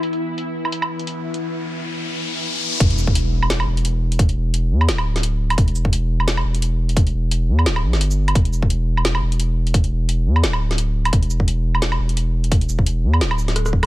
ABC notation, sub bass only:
X:1
M:4/4
L:1/16
Q:"Swing 16ths" 1/4=173
K:Clyd
V:1 name="Sub bass" clef=bass
z16 | z16 | E,,,8- E,,,2 E,,,6- | E,,,2 E,,,4 E,,2 D,,,8 |
E,,,8- E,,,2 E,,,6- | E,,,2 E,,,4 E,,2 D,,,2 B,,, G,,,4- G,,, | E,,,8- E,,,2 E,,,6- | E,,,2 E,,,4 E,,2 D,,,8 |
E,,,8- E,,,2 E,,,6- | E,,,2 E,,,4 E,,2 D,,,8 |]